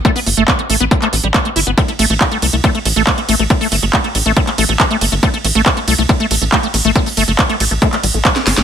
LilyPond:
<<
  \new Staff \with { instrumentName = "Acid bass" } { \time 4/4 \key a \minor \tempo 4 = 139 a16 b16 a16 a16 b16 a16 a16 b16 a16 a16 a16 g16 a16 a16 e'16 b16 | a16 a16 a16 a16 a16 a16 a16 a16 a16 a16 a16 a16 a16 a16 a16 a16 | a16 a16 a16 a16 a16 a16 a16 a16 a16 a16 a16 a16 a16 a16 a16 a16 | a16 a16 a16 a16 a16 a16 a16 a16 a16 a16 a16 a16 a16 a16 a16 a16 |
a16 a16 a16 a16 a16 a16 a16 a16 a16 a16 g16 a16 a16 c'16 a16 a16 | }
  \new Staff \with { instrumentName = "Analog synth bass" } { \clef bass \time 4/4 \key a \minor r8 g,,16 g,,16 r8 a,,16 a,,16 r8 a,,16 a,,16 r8 g,,16 g,,16 | r8 a,,16 a,,16 r8 c,16 c,16 r8 a,,16 a,,16 r8 a,,16 a,,16 | r8 g,,16 g,,16 r8 a,,16 a,,16 r8 a,,16 a,,16 r8 g,,16 g,,16 | r8 a,,16 a,,16 r8 c,16 c,16 r8 a,,16 a,,16 r8 a,,16 a,,16 |
r8 g,,16 g,,16 r8 a,,16 a,,16 r8 a,,16 a,,16 r8 g,,16 g,,16 | }
  \new DrumStaff \with { instrumentName = "Drums" } \drummode { \time 4/4 <hh bd>16 hho16 hho16 hh16 <hc hh bd>16 hh16 hho16 hh16 <hh bd>16 <hc hh>16 hho16 hh16 <hc hh bd>16 hh16 hho16 hh16 | <hh bd cymr>16 hh16 <hho cymr>16 hh16 <hc hh bd>16 hh16 <hho cymr>16 hh16 <hh bd cymr>16 hh16 <hho cymr>16 hh16 <hc hh bd cymr>16 hh16 <hho cymr>16 hh16 | <hh bd cymr>16 hho16 <hho cymr>16 hh16 <hc hh bd cymr>16 hh16 <hho cymr>16 hh16 <hh bd cymr>16 <hc hh>16 <hho cymr>16 hh16 <hc hh bd cymr>16 hh16 <hho cymr>16 hh16 | <hh bd cymr>16 hh16 <hho cymr>16 hh16 <hc hh bd cymr>16 hh16 <hho cymr>16 hh16 <hh bd cymr>16 hh16 <hho cymr>16 hh16 <hc hh bd cymr>16 hh16 <hho cymr>16 hh16 |
<hh bd cymr>16 hho16 <hho cymr>16 hh16 <hc hh bd cymr>16 hh16 <hho cymr>16 hh16 <hh bd cymr>16 <hc hh>16 <hho cymr>16 hh16 <hc hh bd cymr>16 <hh sn>16 <hho cymr sn>16 <hh sn>16 | }
>>